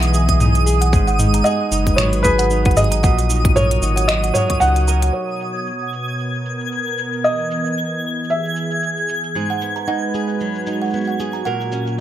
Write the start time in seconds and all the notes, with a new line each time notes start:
Already playing: B1 E3 G#3 B3 D#4 G#4 E5 D#6
0.03 closed hi-hat, shaker
0.14 G#4, shaker
0.29 kick, closed hi-hat, shaker
0.40 D#4, mid tom, shaker
0.55 closed hi-hat, shaker
0.66 G#4, shaker
0.81 F#5, closed hi-hat, shaker
0.93 G#1 G#2 G#3, kick, shaker
1.07 F#5, shaker
1.19 D#4, mid tom, shaker
1.34 A#5, closed hi-hat, shaker
1.44 G#4 D#5 F#5, shaker
1.59 B4
1.71 F#1 D#4, shaker
1.85 F#4, kick, closed hi-hat, shaker
1.96 G#1 F#3 C#5, finger snap, mid tom, shaker
2.13 closed hi-hat, shaker
2.23 G#4 B4, kick, shaker
2.38 F#5, closed hi-hat, shaker
2.50 D#4, shaker
2.65 F#5, kick, closed hi-hat
2.71 closed hi-hat
2.77 G#4 D#5, closed hi-hat, mid tom, shaker
2.84 closed hi-hat
2.91 A#5, closed hi-hat, shaker
3.03 A#1 A#2 F#5, kick, shaker
3.19 closed hi-hat, shaker
3.30 D#4 C#5, shaker
3.45 kick, closed hi-hat
3.56 A#4 C#5, mid tom, shaker
3.71 closed hi-hat
3.82 G#1 D#4, shaker
3.96 F#5, closed hi-hat, shaker
4.08 F#3 D#5, finger snap, shaker
4.23 F#5, closed hi-hat, shaker
4.34 A#4 C#5 F#5, mid tom, shaker
4.50 C#6, kick, closed hi-hat
4.60 C#2 D#4 F#5, shaker
4.76 closed hi-hat, shaker
4.88 A#4 A#5, shaker
5.02 F#5, closed hi-hat, shaker
5.13 B2 C#5 G#6, shaker
5.22 B3
5.29 shaker
5.40 shaker
5.55 shaker
5.67 shaker
5.93 shaker
6.08 A#4, shaker
6.19 shaker
6.34 shaker
6.46 shaker
6.60 shaker
6.72 shaker
6.87 shaker
6.98 shaker
7.13 shaker
7.24 E3 D#5, shaker
7.40 shaker
7.51 shaker
7.66 shaker
7.77 shaker
8.21 G#4, shaker
8.30 E5, shaker
8.45 shaker
8.56 shaker
8.71 shaker
8.82 shaker
8.97 shaker
9.09 shaker
9.24 shaker
9.35 G#2 G#3 G#4, shaker
9.50 F#5, shaker
9.59 B3 B4, shaker
9.76 A#5, shaker
9.88 D#4 F#5, shaker
10.03 F#4
10.14 G#4, shaker
10.29 shaker
10.40 F#3, shaker
10.55 shaker
10.67 D#4, shaker
10.82 F#5, shaker
10.84 shaker
10.87 shaker
10.90 shaker
10.93 B3, shaker
10.97 shaker
11.01 shaker
11.04 F#5, shaker
11.08 shaker
11.20 G#4, shaker
11.33 A#5, shaker
11.45 A#2 A#4 F#5, shaker
11.61 shaker
11.72 C#4, shaker
11.80 C#4
11.87 shaker